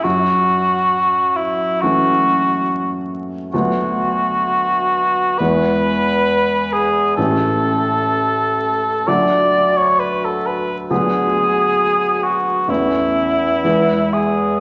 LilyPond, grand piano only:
\new Staff \with { instrumentName = "Grand piano" } { \clef bass \time 4/4 \key a \major \tempo 4 = 67 fis,2 <e a cis'>2 | <d, fis a b>2 <e, e gis b>2 | <a,, e a cis'>2 <d, fis a d'>2 | <d, fis b d'>2 <e, e a cis'>4 <e, e gis b>4 | }